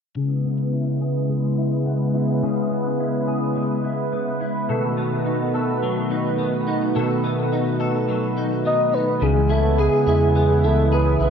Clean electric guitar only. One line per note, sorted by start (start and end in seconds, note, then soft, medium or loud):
0.16 2.41 C#3 medium
0.16 1.00 G#4 medium
0.45 1.85 B3 medium
0.73 1.56 E4 soft
1.01 2.42 G#4 soft
1.29 3.55 G#3 medium
1.58 2.13 E4 soft
1.86 2.71 B3 soft
2.14 2.98 E4 soft
2.43 4.69 C#3 medium
2.43 3.26 G#4 medium
2.71 4.12 B3 soft
2.99 3.83 E4 soft
3.27 4.69 G#4 medium
3.56 4.75 G#3 medium
3.84 4.39 E4 soft
4.12 4.97 B3 soft
4.41 4.75 E4 medium
4.69 6.94 B2 medium
4.69 5.53 A4 medium
4.97 6.38 B3 medium
5.25 6.09 D#4 medium
5.54 6.95 A4 medium
5.83 8.07 F#3 medium
6.11 6.66 D#4 soft
6.38 7.23 B3 soft
6.67 7.51 D#4 medium
6.95 9.22 B2 medium
6.95 7.79 A4 medium
7.24 8.65 B3 medium
7.52 8.36 D#4 medium
7.80 9.27 A4 medium
8.09 9.27 F#3 soft
8.37 8.92 D#4 soft
8.65 10.35 B3 medium
8.93 9.27 D#4 medium
9.21 11.30 C#3 medium
9.49 10.05 E4 medium
9.78 10.91 G#4 medium
10.07 10.62 E4 medium
10.35 11.30 B3 soft
10.63 11.19 E4 soft
10.92 11.30 G#4 medium
11.20 11.30 E4 medium